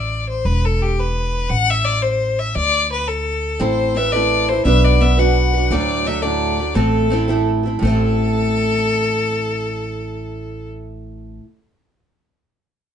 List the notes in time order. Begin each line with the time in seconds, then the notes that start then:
Already playing: A1 D5
0.29 C5
0.45 E1 B4
0.65 A4
0.82 G4
0.99 B4
1.50 A1 F#5
1.70 E5
1.84 D5
2.02 C5
2.39 E5
2.55 D2 D5
2.92 B4
3.08 A4
3.59 A1 A3 C4 E4 A4 C5
3.95 C4 E4 A4 B4 E5
4.12 A3 C4 E4 A4 B4 D5
4.48 A4 B4 C5
4.52 E4
4.65 B1 B3 D4 F#4 B4 E5
4.85 D5
5.00 B3 D4 F#4 B4 E5
5.17 B3 D4 F#4 B4 F#5
5.53 D4 F#4 B4
5.71 D2 A2 F#3 A3 D4 A4 D5
6.06 F#3 A3 D4 A4 E5
6.22 D2 A2 F#3 A3 D4 A4 D5
6.58 F#3 A3 D4 A4
6.74 A1 A2 A3 C4 E4 A4
7.10 A3 C4 E4 A4
7.28 A2 A3 C4 E4 A4
7.63 C4 E4 A4
7.79 A1 A2 A3 A4
7.85 C4 E4
7.89 A4